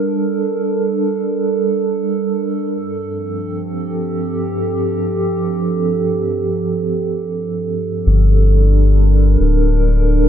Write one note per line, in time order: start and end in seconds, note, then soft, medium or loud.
0.00 2.73 G3 medium
0.00 3.93 D4 medium
0.00 10.29 A4 medium
0.00 2.73 A#4 medium
2.73 8.06 G2 medium
3.01 8.06 F3 medium
3.01 9.29 C4 medium
3.53 9.58 G4 medium
8.06 9.37 G1 medium
8.06 10.29 G3 medium
8.21 10.29 D4 medium
8.85 10.29 A#4 medium
9.40 10.29 D1 loud